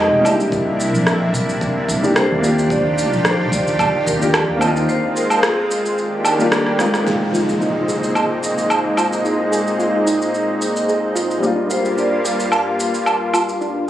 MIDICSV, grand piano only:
0, 0, Header, 1, 2, 480
1, 0, Start_track
1, 0, Tempo, 545455
1, 457, Time_signature, 4, 2, 24, 8
1, 12231, End_track
2, 0, Start_track
2, 0, Title_t, "Grand piano"
2, 0, Program_c, 0, 0
2, 0, Note_on_c, 0, 56, 71
2, 0, Note_on_c, 0, 60, 75
2, 0, Note_on_c, 0, 63, 70
2, 0, Note_on_c, 0, 67, 82
2, 180, Note_off_c, 0, 56, 0
2, 182, Note_on_c, 0, 58, 86
2, 186, Note_off_c, 0, 60, 0
2, 192, Note_off_c, 0, 63, 0
2, 197, Note_off_c, 0, 67, 0
2, 205, Note_on_c, 0, 62, 85
2, 227, Note_on_c, 0, 64, 77
2, 250, Note_on_c, 0, 67, 96
2, 1738, Note_off_c, 0, 58, 0
2, 1749, Note_off_c, 0, 62, 0
2, 1760, Note_off_c, 0, 64, 0
2, 1768, Note_on_c, 0, 58, 76
2, 1772, Note_off_c, 0, 67, 0
2, 1778, Note_on_c, 0, 62, 69
2, 1790, Note_on_c, 0, 64, 66
2, 1801, Note_on_c, 0, 67, 86
2, 2087, Note_off_c, 0, 58, 0
2, 2100, Note_on_c, 0, 58, 91
2, 2106, Note_off_c, 0, 62, 0
2, 2112, Note_off_c, 0, 64, 0
2, 2118, Note_off_c, 0, 67, 0
2, 2123, Note_on_c, 0, 62, 79
2, 2146, Note_on_c, 0, 65, 80
2, 2169, Note_on_c, 0, 67, 92
2, 3657, Note_off_c, 0, 58, 0
2, 3668, Note_off_c, 0, 62, 0
2, 3680, Note_off_c, 0, 65, 0
2, 3686, Note_on_c, 0, 58, 78
2, 3691, Note_off_c, 0, 67, 0
2, 3697, Note_on_c, 0, 62, 70
2, 3709, Note_on_c, 0, 65, 70
2, 3720, Note_on_c, 0, 67, 89
2, 4006, Note_off_c, 0, 58, 0
2, 4019, Note_on_c, 0, 58, 92
2, 4026, Note_off_c, 0, 62, 0
2, 4032, Note_off_c, 0, 65, 0
2, 4037, Note_off_c, 0, 67, 0
2, 4042, Note_on_c, 0, 60, 85
2, 4066, Note_on_c, 0, 63, 79
2, 4088, Note_on_c, 0, 65, 101
2, 5225, Note_off_c, 0, 58, 0
2, 5236, Note_off_c, 0, 60, 0
2, 5248, Note_off_c, 0, 63, 0
2, 5259, Note_off_c, 0, 65, 0
2, 5607, Note_on_c, 0, 55, 80
2, 5619, Note_on_c, 0, 58, 71
2, 5630, Note_on_c, 0, 62, 67
2, 5641, Note_on_c, 0, 65, 84
2, 5941, Note_off_c, 0, 55, 0
2, 5947, Note_off_c, 0, 58, 0
2, 5952, Note_off_c, 0, 62, 0
2, 5958, Note_off_c, 0, 65, 0
2, 5958, Note_on_c, 0, 56, 91
2, 5970, Note_on_c, 0, 60, 77
2, 5980, Note_on_c, 0, 63, 80
2, 5991, Note_on_c, 0, 65, 99
2, 6182, Note_on_c, 0, 46, 61
2, 6187, Note_off_c, 0, 56, 0
2, 6200, Note_on_c, 0, 56, 58
2, 6205, Note_off_c, 0, 60, 0
2, 6218, Note_on_c, 0, 60, 57
2, 6221, Note_off_c, 0, 63, 0
2, 6234, Note_on_c, 0, 63, 56
2, 6239, Note_off_c, 0, 65, 0
2, 6252, Note_on_c, 0, 65, 67
2, 10013, Note_off_c, 0, 46, 0
2, 10021, Note_on_c, 0, 55, 63
2, 10022, Note_off_c, 0, 56, 0
2, 10031, Note_off_c, 0, 60, 0
2, 10039, Note_off_c, 0, 63, 0
2, 10043, Note_on_c, 0, 58, 59
2, 10048, Note_off_c, 0, 65, 0
2, 10067, Note_on_c, 0, 62, 56
2, 10089, Note_on_c, 0, 65, 73
2, 12231, Note_off_c, 0, 55, 0
2, 12231, Note_off_c, 0, 58, 0
2, 12231, Note_off_c, 0, 62, 0
2, 12231, Note_off_c, 0, 65, 0
2, 12231, End_track
0, 0, End_of_file